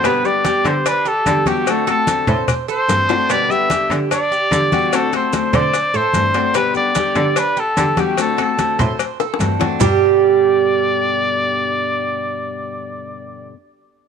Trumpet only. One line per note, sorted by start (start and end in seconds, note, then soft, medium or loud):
0.06 0.27 B4 loud
0.26 0.68 D5 loud
0.67 0.86 C5 loud
0.88 1.09 B4 loud
1.07 1.49 A4 loud
1.47 1.71 G4 medium
1.70 1.89 A4 loud
1.90 2.46 A4 loud
2.70 3.33 C5 loud
3.31 3.52 D5 loud
3.51 3.91 E5 loud
4.14 4.96 D5 loud
4.95 5.14 A4 loud
5.16 5.33 C5 medium
5.35 5.57 C5 medium
5.55 5.97 D5 loud
5.96 6.56 C5 loud
6.56 6.75 B4 loud
6.77 7.40 D5 medium
7.39 7.61 B4 loud
7.60 8.01 A4 loud
8.00 8.19 G4 medium
8.21 8.39 A4 medium
8.41 8.97 A4 medium
9.82 13.51 D5 loud